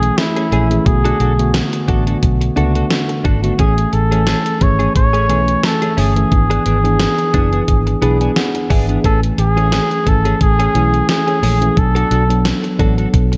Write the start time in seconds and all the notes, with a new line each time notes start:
Already playing: E3 A3 C#4 G#4 G#5
0.03 muted clean electric guitar stroke, closed hi-hat
0.18 E4, muted clean electric guitar stroke, snare, closed hi-hat
0.36 A3 C#4 G#4, closed hi-hat
0.52 A#1 A3 C#4 G#4, closed hi-hat
0.70 E3 A3 C#4 G#4, muted clean electric guitar stroke, closed hi-hat
0.86 B1 D3 A3 B3 F#4 G#4, muted clean electric guitar stroke, kick, closed hi-hat
1.05 D4 F#4 A4, closed hi-hat
1.20 B1 D4 F#4 A4, closed hi-hat
1.39 D3 A3 B3 F#4, muted clean electric guitar stroke, closed hi-hat
1.54 muted clean electric guitar stroke, snare, closed hi-hat
1.73 muted clean electric guitar stroke, closed hi-hat
1.88 A1 D3 A3 B3 D4 F#4 A4, kick, closed hi-hat
2.07 D4 F#4 A4, closed hi-hat
2.22 B1, muted clean electric guitar stroke, kick, closed hi-hat
2.41 muted clean electric guitar stroke, closed hi-hat
2.56 C#2 A3 B3 D4 F#4 A4, closed hi-hat
2.75 D4 F#4 A4, closed hi-hat
2.90 muted clean electric guitar stroke, snare, closed hi-hat
3.09 muted clean electric guitar stroke, closed hi-hat
3.24 G#1 D4 F#4 A4, kick, closed hi-hat
3.43 D3 A3 B3 D4 F#4 A4, closed hi-hat
3.58 A1 E3 A3 C#4 G#4, kick, closed hi-hat
3.77 muted clean electric guitar stroke, closed hi-hat
3.92 A1 A4, muted clean electric guitar stroke, closed hi-hat
4.11 E3 A3 C#4 G#4 G#5, closed hi-hat
4.26 A3 C#4 G#4, snare, closed hi-hat
4.45 muted clean electric guitar stroke, closed hi-hat
4.61 G#1 E3 A3 C#4 G#4 C#5, muted clean electric guitar stroke, kick, closed hi-hat
4.79 A3 C#4 G#4, closed hi-hat
4.95 A1 C#5, muted clean electric guitar stroke, kick, closed hi-hat
5.13 A3 C#4 G#4, closed hi-hat
5.29 B1 E3 A3 C#4 G#4 G#5, closed hi-hat
5.48 muted clean electric guitar stroke, closed hi-hat
5.63 A4, muted clean electric guitar stroke, snare, closed hi-hat
5.82 A3 C#4 G#4, closed hi-hat
5.97 G1 A3 C#4 G#4, open hi-hat
6.16 E3 A3 C#4 G#4, muted clean electric guitar stroke, closed hi-hat
6.31 G#1 E3 B3 D4 G#4, muted clean electric guitar stroke, kick, closed hi-hat
6.50 B3 D4 G#4, closed hi-hat
6.65 G#1 B3 D4 G#4, closed hi-hat
6.84 E3 B3 D4 G#4, muted clean electric guitar stroke, closed hi-hat
7.00 muted clean electric guitar stroke, snare, closed hi-hat
7.18 muted clean electric guitar stroke, closed hi-hat
7.33 F#1 E3 B3 D4 G#4, kick, closed hi-hat
7.52 B3 D4 G#4, closed hi-hat
7.68 G#1, muted clean electric guitar stroke, kick, closed hi-hat
7.87 muted clean electric guitar stroke, closed hi-hat
8.02 B1 E3 B3 D4 G#4 B5, closed hi-hat
8.21 B3 D4 G#4 G#5, closed hi-hat
8.36 F#5, muted clean electric guitar stroke, snare, closed hi-hat
8.55 muted clean electric guitar stroke, closed hi-hat
8.70 G#1 B3 D4 G#4 E5, kick, open hi-hat
8.88 E3 B3 D4 G#4, closed hi-hat
9.04 A1 E3 A3 C#4 G#4 A4 G#5, kick, closed hi-hat
9.23 closed hi-hat
9.38 A1 G#4, muted clean electric guitar stroke, closed hi-hat
9.56 E3 A3 C#4 G#4, closed hi-hat
9.72 A3 C#4 G#4, snare, closed hi-hat
9.91 muted clean electric guitar stroke, closed hi-hat
10.06 G#1 E3 A3 C#4 A4 G#5, muted clean electric guitar stroke, kick, closed hi-hat
10.25 A3 C#4 G#4, closed hi-hat
10.41 A1 G#4, muted clean electric guitar stroke, kick, closed hi-hat
10.59 A3 C#4 G#4, closed hi-hat
10.74 B1 E3 A3 C#4 E4 G#4, closed hi-hat
10.93 muted clean electric guitar stroke, closed hi-hat
11.09 G#4, muted clean electric guitar stroke, snare, closed hi-hat
11.27 A3 C#4 G#4, closed hi-hat
11.43 A#1 A3 C#4 G#4, open hi-hat
11.61 E3 A3 C#4 G#4, closed hi-hat
11.76 B1 F#3 B3 D4 A4, muted clean electric guitar stroke, kick, closed hi-hat
11.95 D4 F#4 A4, closed hi-hat
12.11 B1 D4 F#4 A4, closed hi-hat
12.29 F#3 B3 D4 A4, muted clean electric guitar stroke, closed hi-hat
12.45 muted clean electric guitar stroke, snare, closed hi-hat
12.64 muted clean electric guitar stroke, closed hi-hat
12.79 A1 F#3 B3 D4 F#4 A4, kick, closed hi-hat
12.98 D4 F#4 A4, closed hi-hat
13.13 B1, muted clean electric guitar stroke, kick, closed hi-hat
13.32 muted clean electric guitar stroke, closed hi-hat